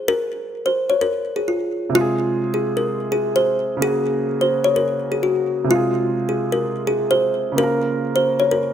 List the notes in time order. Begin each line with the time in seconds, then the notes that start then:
0.08 A#4
0.66 C5
0.90 C#5
1.01 A#4
1.36 G#4
1.48 F4
1.90 C3 G#3
1.95 F4
2.01 G#4
2.54 G#4
2.77 A#4
3.12 G#4
3.36 C5
3.77 C#3 A#3
3.82 F#4 G#4
3.88 G#4
4.41 C5
4.64 C#5
4.76 A#4
5.12 G#4
5.23 F#4
5.64 C3 G#3
5.71 F4
5.76 G#4
6.29 G#4
6.52 A#4
6.87 G#4
7.11 C5
7.52 C#3 A#3
7.58 F4 A#4
7.63 A#4
8.16 C5
8.40 C#5
8.51 A#4